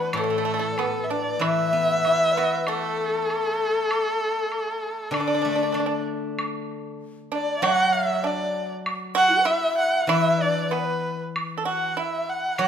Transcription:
0.00 0.78 E3 medium
0.00 0.13 B3 medium
0.00 0.13 B4 medium
0.00 0.15 B4 medium
0.13 2.04 A2 medium
0.13 0.49 A4 medium
0.13 high woodblock medium
0.17 0.23 A3 medium
0.17 1.05 A4 medium
0.24 0.29 A3 soft
0.30 0.37 A3 medium
0.38 0.44 A3 medium
0.45 0.52 A3 medium
0.54 0.58 A3 soft
0.59 0.66 A3 medium
0.72 0.78 D5 soft
0.77 1.08 B3 medium
0.77 1.43 B4 medium
0.77 high woodblock soft
0.77 low woodblock soft
1.04 1.11 E5 medium
1.10 1.39 D4 medium
1.10 1.44 D5 medium
1.39 3.28 E3 medium
1.39 2.32 E4 medium
1.39 2.32 E5 medium
1.39 2.69 E5 loud
1.39 high woodblock medium
1.73 2.98 B3 soft
2.05 3.30 E4 soft
2.05 high woodblock soft
2.31 2.70 B4 medium
2.31 2.34 D5 medium
2.37 2.66 B3 medium
2.37 3.61 F#4 soft
2.67 5.09 A3 medium
2.67 5.13 A4 medium
2.67 4.87 A4 medium
2.67 high woodblock medium
3.30 high woodblock soft
3.91 high woodblock medium
4.52 high woodblock soft
5.11 7.00 D3 medium
5.11 5.19 D4 medium
5.11 6.03 D5 medium
5.11 high woodblock medium
5.20 5.26 D4 soft
5.27 5.33 D4 soft
5.35 5.41 D4 soft
5.42 6.70 A3 soft
5.42 5.48 D4 soft
5.49 5.54 D4 soft
5.56 5.62 D4 soft
5.63 5.70 D4 soft
5.72 5.79 D4 soft
5.72 7.01 D4 soft
5.72 high woodblock soft
5.80 5.85 D4 soft
5.86 5.93 D4 soft
6.39 high woodblock medium
7.32 7.61 D4 medium
7.32 7.64 D5 medium
7.62 9.47 F#3 medium
7.62 8.21 F#4 medium
7.62 7.92 F#5 medium
7.62 7.94 F#5 loud
7.62 high woodblock medium
7.93 8.28 E5 medium
7.93 8.25 E5 medium
8.23 8.67 D4 medium
8.23 8.70 D5 medium
8.23 8.72 D5 medium
8.86 high woodblock medium
9.15 9.45 F#4 loud
9.15 9.29 F#5 medium
9.15 9.47 F#5 loud
9.29 9.34 E4 soft
9.35 9.37 F#4 soft
9.35 9.39 A4 soft
9.40 9.43 B4 medium
9.44 10.04 E4 medium
9.44 9.48 D5 medium
9.44 9.78 E5 loud
9.44 10.07 E5 medium
9.78 10.00 F#5 loud
10.00 10.11 F#5 medium
10.07 11.97 E3 medium
10.07 10.47 E4 medium
10.07 10.31 E5 medium
10.07 10.43 E5 loud
10.07 high woodblock medium
10.31 10.39 E5 medium
10.38 10.68 D5 medium
10.38 10.74 D5 medium
10.47 10.68 D4 medium
10.69 11.15 B3 medium
10.69 10.81 B4 medium
10.69 low woodblock soft
10.73 11.20 B4 medium
10.80 10.87 D5 medium
10.85 11.19 B4 medium
11.36 high woodblock medium
11.57 11.65 A4 medium
11.65 11.95 F#4 medium
11.65 11.95 F#5 medium
11.65 11.99 F#5 medium
11.97 12.55 E4 medium
11.97 12.31 E5 medium
12.29 12.58 F#5 medium
12.58 12.68 F#3 medium
12.58 12.68 F#4 medium
12.58 12.68 F#5 loud
12.58 12.68 F#5 medium
12.58 high woodblock medium

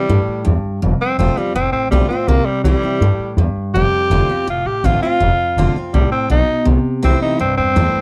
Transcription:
0.00 0.44 G3 loud
0.09 0.21 G2 medium
0.09 0.44 A2 medium
0.28 muted upright bass stroke medium
0.45 0.58 E2 medium
0.45 0.80 G2 medium
0.65 muted upright bass stroke medium
0.82 0.94 F1 loud
0.82 1.52 F2 medium
1.01 1.18 C4 loud
1.01 muted upright bass stroke medium
1.18 1.30 F1 medium
1.18 1.36 D3 medium
1.18 1.37 A3 medium
1.18 1.39 C4 medium
1.18 1.37 C4 medium
1.18 1.36 F4 loud
1.37 1.55 G3 medium
1.37 1.55 C4 soft
1.37 1.55 F4 medium
1.37 muted upright bass stroke medium
1.55 1.67 F1 loud
1.55 2.25 A2 loud
1.55 1.72 C4 loud
1.72 1.85 A1 medium
1.72 1.90 C4 medium
1.91 2.03 B1 medium
1.91 2.10 D3 medium
1.91 2.08 G3 medium
1.91 2.09 A3 medium
1.91 2.10 C4 loud
1.91 2.09 F4 loud
2.09 2.29 C4 medium
2.09 2.28 F4 medium
2.09 muted upright bass stroke medium
2.28 2.40 C2 loud
2.28 2.98 C3 medium
2.28 2.47 A#3 loud
2.45 2.63 G3 loud
2.45 muted upright bass stroke medium
2.64 2.76 C2 medium
2.64 2.83 E3 loud
2.64 3.35 G3 loud
2.64 2.83 A3 medium
2.64 2.83 C4 medium
2.64 2.82 E4 medium
2.82 3.01 C4 medium
2.82 3.01 E4 medium
2.82 muted upright bass stroke medium
3.01 3.13 G2 medium
3.01 3.37 A2 loud
3.19 muted upright bass stroke medium
3.37 3.49 E2 medium
3.37 3.73 G2 medium
3.56 muted upright bass stroke medium
3.74 3.86 F1 loud
3.74 4.45 F2 medium
3.74 4.45 G4 loud
3.92 muted upright bass stroke medium
4.10 4.22 F1 medium
4.10 4.29 D3 medium
4.10 4.29 A3 medium
4.10 4.29 C4 loud
4.10 4.28 F4 medium
4.29 4.48 C4 soft
4.29 4.47 F4 medium
4.29 muted upright bass stroke medium
4.47 4.59 F1 loud
4.47 5.17 A2 medium
4.47 4.68 F4 medium
4.65 4.77 A1 medium
4.65 4.87 G4 medium
4.84 4.96 A1 medium
4.84 5.02 D3 medium
4.84 5.02 A3 medium
4.84 5.02 C4 loud
4.84 5.02 F4 loud
5.02 5.21 C4 medium
5.02 5.73 F4 loud
5.02 5.20 F4 medium
5.02 muted upright bass stroke medium
5.20 5.32 F1 loud
5.20 5.90 F2 medium
5.38 muted upright bass stroke medium
5.56 5.68 F1 medium
5.56 5.75 D3 medium
5.56 5.75 A3 medium
5.56 5.76 C4 medium
5.56 5.75 F4 medium
5.75 5.94 C4 soft
5.75 5.93 F4 medium
5.75 muted upright bass stroke medium
5.93 6.06 C2 medium
5.93 6.29 A2 medium
5.93 6.11 G3 medium
6.12 6.30 C4 medium
6.12 muted upright bass stroke medium
6.30 6.42 B1 medium
6.30 6.65 B2 medium
6.30 6.66 D#4 loud
6.48 muted upright bass stroke medium
6.65 6.78 C2 loud
6.65 7.36 C3 medium
6.85 muted upright bass stroke medium
7.03 7.15 C2 medium
7.03 7.38 E3 medium
7.03 7.38 A3 medium
7.03 7.38 C4 loud
7.03 7.22 C4 medium
7.03 7.39 E4 loud
7.22 7.40 D#4 medium
7.22 muted upright bass stroke medium
7.39 7.52 C2 medium
7.39 8.01 G2 loud
7.39 7.57 C4 loud
7.58 7.70 E2 loud
7.58 8.01 C4 loud
7.76 7.88 E2 medium
7.76 8.01 E3 medium
7.76 8.01 A3 medium
7.76 8.01 C4 loud
7.76 8.01 E4 loud
7.95 muted upright bass stroke medium

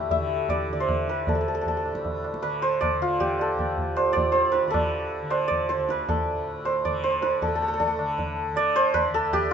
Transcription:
0.00 1.28 D2 medium
0.00 1.84 A2 medium
0.00 0.15 D3 medium
0.00 3.01 E4 medium
0.00 2.29 G4 medium
0.00 1.28 A4 medium
0.00 0.13 B4 medium
0.10 2.41 E5 medium
0.10 tabla tin medium
0.10 tabla ge medium
0.15 0.72 D3 medium
0.49 0.72 D5 medium
0.49 tabla na medium
0.49 tabla ge medium
0.69 2.41 D3 medium
0.69 2.80 D5 medium
0.69 tabla ge medium
0.80 1.15 C5 medium
0.89 tabla na medium
0.89 tabla ge medium
1.08 2.42 B4 medium
1.08 tabla te medium
1.27 3.54 D2 medium
1.27 1.35 A4 medium
1.27 tabla tin medium
1.27 tabla ge medium
1.35 1.40 A4 medium
1.41 1.48 A4 medium
1.48 1.54 A4 medium
1.55 1.61 A4 medium
1.61 1.68 A4 medium
1.66 1.77 A4 medium
1.66 tabla tin medium
1.66 tabla ge medium
1.77 3.41 A4 medium
1.85 4.09 A2 medium
1.85 tabla na medium
1.95 tabla ke medium
2.05 tabla tin medium
2.05 tabla ge medium
2.24 tabla na medium
2.34 tabla ke medium
2.41 2.98 D3 medium
2.41 2.68 B4 medium
2.41 tabla na medium
2.62 3.96 C5 medium
2.81 4.12 D5 medium
2.81 tabla na medium
2.81 tabla ge medium
2.98 4.65 D3 medium
2.98 6.36 F4 medium
3.20 6.34 G4 medium
3.20 tabla tin medium
3.20 tabla ge medium
3.39 4.70 A4 medium
3.39 tabla na medium
3.54 5.77 D2 medium
3.59 tabla na medium
3.59 tabla ge medium
3.78 tabla ge medium
3.96 4.32 C5 medium
3.96 tabla na medium
4.09 6.32 A2 medium
4.09 5.47 D5 medium
4.17 tabla tin medium
4.17 tabla ge medium
4.32 4.58 C5 medium
4.32 tabla te medium
4.52 4.67 B4 medium
4.52 tabla te medium
4.65 5.22 D3 medium
4.65 5.36 B4 medium
4.71 6.09 A4 medium
4.71 tabla na medium
4.71 tabla ge medium
5.22 6.88 D3 medium
5.30 5.69 C5 medium
5.30 tabla na medium
5.48 6.85 D5 medium
5.48 tabla tin medium
5.48 tabla ge medium
5.69 5.96 C5 medium
5.69 tabla te medium
5.77 9.06 D2 medium
5.89 6.71 B4 medium
5.89 tabla te medium
6.09 7.42 A4 medium
6.09 tabla na medium
6.09 tabla ge medium
6.33 7.42 A2 medium
6.65 7.03 C5 medium
6.65 tabla na medium
6.85 7.97 D3 medium
6.85 8.56 D5 medium
6.85 tabla tin medium
6.85 tabla ge medium
7.04 7.28 C5 medium
7.04 tabla te medium
7.22 8.82 B4 medium
7.22 tabla te medium
7.42 9.53 A2 medium
7.42 7.47 A4 medium
7.42 tabla tin loud
7.42 tabla ge medium
7.48 7.55 A4 medium
7.55 7.62 A4 medium
7.62 7.68 A4 medium
7.68 7.73 A4 medium
7.74 7.79 A4 medium
7.80 7.87 A4 medium
7.80 tabla tin medium
7.80 tabla ge medium
7.88 9.14 A4 medium
7.97 8.52 D3 medium
7.97 tabla na medium
8.18 tabla tin medium
8.18 tabla ge medium
8.52 9.53 D3 medium
8.52 tabla na medium
8.57 9.53 D5 loud
8.76 9.00 C5 loud
8.94 9.53 B4 loud
8.94 tabla na medium
8.94 tabla ge medium
9.07 9.53 D2 medium
9.14 9.53 A4 loud
9.33 9.53 G4 loud
9.33 tabla tin medium
9.33 tabla ge medium

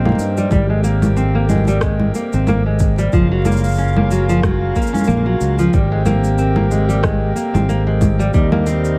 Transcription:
0.00 0.13 A#1 medium
0.00 0.49 D#3 medium
0.00 8.98 A#3 medium
0.00 0.49 C4 medium
0.00 3.09 G4 medium
0.05 0.36 A#3 medium
0.05 low conga medium
0.09 low conga medium
0.12 low conga soft
0.15 0.45 G2 medium
0.15 low conga soft
0.15 cabasa medium
0.37 0.50 G3 medium
0.37 cabasa soft
0.51 2.10 G#1 medium
0.51 3.11 C3 medium
0.51 0.68 G3 medium
0.51 kick loud
0.51 low conga medium
0.51 cabasa soft
0.70 0.83 G#3 medium
0.84 1.15 A#3 medium
0.84 cabasa medium
1.02 low conga medium
1.02 cabasa soft
1.17 1.33 C4 medium
1.17 cabasa soft
1.35 1.48 A#3 medium
1.49 1.66 G#3 medium
1.49 low conga medium
1.49 cabasa medium
1.52 low conga soft
1.56 low conga soft
1.58 low conga soft
1.60 low conga soft
1.64 1.81 G3 medium
1.64 low conga soft
1.64 cabasa soft
1.81 2.13 G#3 medium
1.81 kick loud
1.81 cross-stick medium
1.81 cabasa soft
2.00 low conga medium
2.15 2.31 A#3 medium
2.15 cabasa medium
2.33 3.08 G#1 medium
2.33 2.46 C4 medium
2.33 cabasa soft
2.47 2.64 A#3 medium
2.47 low conga medium
2.47 cabasa soft
2.66 2.97 G#3 medium
2.79 kick medium
2.79 cabasa medium
2.98 3.11 G3 medium
2.98 cabasa soft
3.12 4.71 F#1 medium
3.12 5.71 C#3 medium
3.12 3.29 F3 medium
3.12 5.71 F4 medium
3.12 kick loud
3.12 cabasa soft
3.31 3.44 F#3 medium
3.45 3.77 A#3 medium
3.45 low conga medium
3.45 cabasa medium
3.52 cabasa medium
3.57 cabasa soft
3.64 cabasa soft
3.68 cabasa soft
3.72 cabasa soft
3.74 cabasa soft
3.78 3.94 C#4 medium
3.78 cabasa soft
3.88 cabasa soft
3.92 cabasa soft
3.96 4.10 A#3 medium
3.96 low conga medium
4.11 4.27 F#3 medium
4.11 cabasa medium
4.29 4.42 F3 medium
4.29 cabasa soft
4.43 4.75 F#3 medium
4.43 kick loud
4.43 cross-stick medium
4.43 low conga medium
4.43 cabasa soft
4.76 4.92 A#3 medium
4.76 kick soft
4.76 cabasa soft
4.82 cabasa soft
4.87 cabasa soft
4.93 5.06 C#4 medium
4.93 low conga medium
4.93 cabasa medium
4.98 low conga medium
4.98 cabasa medium
5.04 5.24 A#3 medium
5.04 cabasa medium
5.08 5.34 A#1 medium
5.08 low conga soft
5.08 cabasa soft
5.17 low conga soft
5.26 5.57 F#3 medium
5.41 5.67 C#2 medium
5.41 cabasa medium
5.59 5.72 F3 medium
5.59 cabasa soft
5.72 7.31 G#1 medium
5.72 8.98 C3 medium
5.72 5.90 G3 medium
5.72 8.31 G4 medium
5.72 kick loud
5.72 cabasa soft
5.92 6.05 G#3 medium
6.06 6.37 A#3 medium
6.06 low conga medium
6.06 cabasa medium
6.24 cabasa soft
6.38 6.55 C4 medium
6.38 cabasa soft
6.56 6.69 A#3 medium
6.56 low conga medium
6.71 6.88 G#3 medium
6.71 cabasa medium
6.89 7.02 G3 medium
6.89 cabasa soft
7.03 7.35 G#3 medium
7.03 kick loud
7.03 cross-stick medium
7.03 low conga medium
7.03 cabasa soft
7.35 7.52 A#3 medium
7.35 cabasa medium
7.54 8.29 G#1 medium
7.54 7.67 C4 medium
7.54 low conga medium
7.54 cabasa soft
7.69 7.85 A#3 medium
7.69 cabasa soft
7.87 8.18 G#3 medium
8.01 kick medium
8.01 low conga medium
8.01 cabasa medium
8.19 8.33 G3 medium
8.19 cabasa soft
8.34 8.98 D#2 medium
8.34 8.51 G3 medium
8.34 8.98 G3 medium
8.34 8.98 D#4 medium
8.34 kick loud
8.34 cabasa soft
8.52 8.65 A#3 medium
8.52 low conga medium
8.66 8.98 C4 medium
8.66 cabasa medium
8.85 cabasa soft

